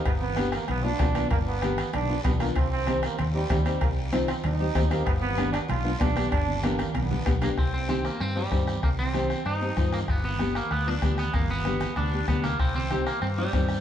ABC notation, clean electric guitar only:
X:1
M:4/4
L:1/8
Q:1/4=192
K:Cm
V:1 name="Clean electric guitar"
z8 | z8 | z8 | z8 |
z8 | z6 z B, | C C C B, C G,3 | B, C3 E3 B, |
=B, B,2 _B, =B, D2 B, | B, =B,3 D2 B, _B, | C C2 B, C G,3 |]